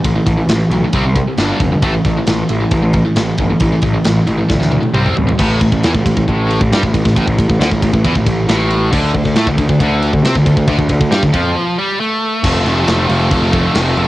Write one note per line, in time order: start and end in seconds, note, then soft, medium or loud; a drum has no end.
0.04 0.18 A1 medium
0.04 0.15 A2 medium
0.04 0.14 E3 medium
0.04 kick loud
0.04 ride medium
0.16 0.25 A2 medium
0.16 0.25 E3 medium
0.26 0.40 A1 medium
0.26 0.37 A2 medium
0.26 0.36 E3 medium
0.26 kick medium
0.26 ride medium
0.37 0.48 A2 medium
0.37 0.49 E3 medium
0.48 0.62 A1 medium
0.48 0.69 A2 medium
0.48 0.70 E3 medium
0.48 snare loud
0.48 ride medium
0.70 0.84 B1 medium
0.70 0.84 A2 medium
0.70 0.83 E3 medium
0.70 ride medium
0.84 0.94 A2 medium
0.84 0.94 E3 medium
0.93 1.21 C2 medium
0.93 1.04 C3 medium
0.93 1.04 G3 medium
0.93 1.04 C4 medium
0.93 kick loud
0.93 ride medium
1.06 1.16 C3 medium
1.06 1.15 G3 medium
1.16 1.27 C3 medium
1.16 1.27 G3 medium
1.16 kick medium
1.16 ride medium
1.28 1.38 C3 medium
1.28 1.38 G3 medium
1.38 1.52 G1 medium
1.38 1.59 G2 medium
1.38 1.60 D3 medium
1.38 1.60 G3 loud
1.38 snare loud
1.38 ride loud
1.60 1.74 F1 medium
1.60 1.71 G2 medium
1.60 1.71 D3 medium
1.60 kick medium
1.60 ride medium
1.72 1.83 G2 medium
1.72 1.82 D3 medium
1.82 1.96 A1 medium
1.82 1.93 A2 medium
1.82 1.92 E3 loud
1.82 1.93 A3 medium
1.82 kick loud
1.82 ride medium
1.94 2.05 A2 medium
1.94 2.05 E3 medium
2.05 2.19 A1 medium
2.05 2.16 A2 medium
2.05 2.16 E3 medium
2.05 kick medium
2.05 ride medium
2.17 2.27 A2 medium
2.17 2.27 E3 medium
2.27 2.41 A1 medium
2.27 2.48 A2 medium
2.27 2.48 E3 medium
2.27 snare loud
2.27 ride medium
2.49 2.64 A1 medium
2.49 2.60 A2 medium
2.49 2.59 E3 medium
2.49 ride medium
2.60 2.70 A2 medium
2.60 2.71 E3 medium
2.71 2.99 A1 medium
2.71 2.81 A2 medium
2.71 2.81 E3 medium
2.71 kick loud
2.71 ride medium
2.82 2.93 A2 medium
2.82 2.93 E3 medium
2.93 3.04 A2 medium
2.93 3.04 E3 medium
2.93 kick medium
2.93 ride medium
3.05 3.16 A2 medium
3.05 3.16 E3 medium
3.16 3.30 A1 medium
3.16 3.37 A2 medium
3.16 3.37 E3 medium
3.16 snare loud
3.16 ride medium
3.38 3.52 G1 medium
3.38 3.49 A2 medium
3.38 3.49 E3 medium
3.38 kick medium
3.38 ride medium
3.50 3.61 A2 medium
3.50 3.61 E3 medium
3.60 3.75 A1 medium
3.60 3.72 A2 medium
3.60 3.71 E3 medium
3.60 kick loud
3.60 ride medium
3.72 3.82 A2 medium
3.72 3.81 E3 medium
3.82 3.96 A1 medium
3.82 3.93 A2 medium
3.82 3.92 E3 medium
3.82 kick medium
3.82 ride medium
3.93 4.04 A2 medium
3.93 4.04 E3 medium
4.05 4.19 A1 medium
4.05 4.25 A2 medium
4.05 4.25 E3 medium
4.05 snare loud
4.05 ride medium
4.27 4.41 A1 medium
4.27 4.37 A2 medium
4.27 4.37 E3 medium
4.27 ride medium
4.38 4.47 A2 medium
4.38 4.48 E3 medium
4.49 4.78 D2 medium
4.49 4.59 A2 medium
4.49 4.59 E3 medium
4.49 kick loud
4.49 snare medium
4.60 4.70 A2 medium
4.60 4.69 E3 medium
4.60 snare medium
4.71 4.80 A2 medium
4.71 4.79 E3 medium
4.71 high tom medium
4.81 4.93 A2 medium
4.81 4.93 E3 medium
4.81 high tom medium
4.94 5.08 C2 medium
4.94 5.15 C3 medium
4.94 5.15 G3 medium
4.94 5.15 C4 loud
4.94 mid tom medium
5.06 mid tom medium
5.16 5.31 A1 medium
5.16 5.26 C3 medium
5.16 5.26 G3 medium
5.16 floor tom medium
5.27 5.38 C3 medium
5.27 5.39 G3 medium
5.27 floor tom medium
5.38 5.60 A1 loud
5.38 5.60 A2 medium
5.38 kick loud
5.38 crash loud
5.61 5.71 A1 medium
5.61 5.71 A2 medium
5.61 kick medium
5.61 ride medium
5.72 5.83 A1 medium
5.72 5.83 A2 medium
5.72 kick medium
5.83 5.93 E2 medium
5.83 5.93 E3 loud
5.83 snare loud
5.83 ride loud
5.94 6.04 A1 medium
5.94 6.05 A2 medium
5.94 kick medium
6.05 6.16 A1 medium
6.05 6.16 A2 medium
6.05 kick medium
6.05 ride medium
6.17 6.27 A1 medium
6.17 6.27 A2 medium
6.17 kick medium
6.28 6.59 A1 loud
6.28 6.60 A2 medium
6.28 kick loud
6.28 ride loud
6.50 ride medium
6.61 6.71 A1 medium
6.61 6.72 A2 medium
6.61 kick medium
6.72 6.82 G2 medium
6.72 6.82 G3 loud
6.72 snare loud
6.72 ride loud
6.83 6.93 A1 medium
6.83 6.93 A2 medium
6.83 kick medium
6.94 7.04 A1 medium
6.94 7.04 A2 medium
6.94 kick medium
6.94 ride medium
7.05 7.15 A1 medium
7.05 7.15 A2 medium
7.05 kick loud
7.05 snare soft
7.16 7.26 A1 medium
7.16 7.26 A2 loud
7.16 kick loud
7.16 ride medium
7.27 7.37 A1 medium
7.27 7.37 A2 medium
7.27 kick medium
7.38 7.48 A1 medium
7.38 7.48 A2 medium
7.38 kick medium
7.38 ride medium
7.49 7.59 A1 medium
7.49 7.60 A2 medium
7.49 kick medium
7.59 7.70 D2 loud
7.59 7.70 D3 loud
7.59 snare loud
7.59 ride loud
7.71 7.81 A1 medium
7.71 7.82 A2 medium
7.71 kick medium
7.82 7.92 A1 medium
7.82 7.93 A2 medium
7.82 kick loud
7.82 ride medium
7.93 8.03 A1 medium
7.93 8.05 A2 medium
7.93 kick medium
8.04 8.15 E2 medium
8.04 8.15 E3 medium
8.04 kick medium
8.04 ride loud
8.15 8.25 A1 medium
8.15 8.25 A2 medium
8.15 kick medium
8.26 8.47 A1 medium
8.26 8.44 A2 medium
8.26 kick medium
8.26 ride medium
8.48 8.89 A1 medium
8.48 8.91 A2 loud
8.48 snare loud
8.48 ride loud
8.70 ride medium
8.92 9.13 D2 medium
8.92 9.13 D3 loud
8.92 kick loud
8.92 crash loud
9.14 9.24 D2 medium
9.14 9.24 D3 medium
9.14 kick loud
9.14 ride medium
9.25 9.35 D2 medium
9.25 9.36 D3 medium
9.25 kick medium
9.36 9.46 A2 loud
9.36 9.47 A3 loud
9.36 snare loud
9.36 ride loud
9.46 9.57 D2 medium
9.46 9.58 D3 medium
9.46 kick medium
9.57 9.68 D2 medium
9.57 9.69 D3 medium
9.57 kick loud
9.57 ride medium
9.69 9.79 D2 medium
9.69 9.81 D3 medium
9.69 kick medium
9.80 10.11 D2 medium
9.80 10.13 D3 medium
9.80 kick medium
9.80 ride loud
10.02 ride medium
10.13 10.22 D2 medium
10.13 10.25 D3 medium
10.13 kick medium
10.23 10.34 C3 medium
10.23 10.35 C4 loud
10.23 snare loud
10.23 ride loud
10.35 10.45 D2 medium
10.35 10.45 D3 medium
10.35 kick medium
10.46 10.56 D2 medium
10.46 10.57 D3 medium
10.46 kick medium
10.46 ride medium
10.57 10.67 D2 medium
10.57 10.67 D3 medium
10.57 kick medium
10.67 10.78 D2 loud
10.67 10.78 D3 loud
10.67 kick medium
10.67 ride loud
10.78 10.89 D2 medium
10.78 10.89 D3 medium
10.78 kick medium
10.89 11.00 D2 medium
10.89 11.00 D3 medium
10.89 kick medium
10.89 ride medium
11.01 11.10 D2 medium
11.01 11.12 D3 medium
11.01 kick medium
11.11 11.22 G2 loud
11.11 11.22 G3 loud
11.11 snare loud
11.11 ride medium
11.23 11.33 D2 medium
11.23 11.33 D3 medium
11.23 kick medium
11.33 11.54 F2 medium
11.33 11.77 F3 loud
11.33 kick medium
11.33 ride medium
11.79 12.00 G3 loud
12.00 12.43 A3 loud
12.43 12.62 F1 medium
12.43 12.51 F3 medium
12.43 12.52 A3 medium
12.43 kick loud
12.43 crash loud
12.43 crash medium
12.52 12.59 F3 medium
12.52 12.60 A3 medium
12.59 12.66 F3 medium
12.59 12.67 A3 medium
12.65 12.84 F1 medium
12.65 12.74 F3 medium
12.65 12.75 A3 medium
12.65 crash medium
12.75 12.82 F3 medium
12.75 12.83 A3 medium
12.82 12.89 F3 medium
12.82 12.90 A3 medium
12.87 13.06 F1 loud
12.87 12.97 F3 medium
12.87 12.98 A3 medium
12.87 snare loud
12.87 crash medium
12.97 13.05 F3 medium
12.97 13.06 A3 medium
13.05 13.12 F3 medium
13.05 13.13 A3 medium
13.09 13.28 F1 medium
13.09 13.20 F3 medium
13.09 crash medium
13.13 13.20 A3 medium
13.20 13.27 F3 medium
13.20 13.28 A3 medium
13.28 13.68 F1 loud
13.28 13.35 F3 medium
13.28 13.36 A3 medium
13.28 kick medium
13.28 crash medium
13.36 13.42 F3 medium
13.36 13.42 A3 medium
13.43 13.50 F3 medium
13.43 13.50 A3 medium
13.51 13.58 F3 medium
13.51 13.59 A3 medium
13.51 kick medium
13.51 crash medium
13.59 13.65 F3 medium
13.59 13.66 A3 medium
13.65 13.73 F3 medium
13.65 13.74 A3 medium
13.74 13.94 F1 loud
13.74 13.81 F3 medium
13.74 13.81 A3 medium
13.74 snare loud
13.74 crash medium
13.82 13.88 F3 medium
13.82 13.88 A3 medium
13.89 13.96 F3 medium
13.89 13.96 A3 medium
13.96 14.08 F1 medium
13.96 14.03 F3 medium
13.96 14.04 A3 medium
13.96 crash medium
14.04 14.08 F3 medium
14.04 14.08 A3 medium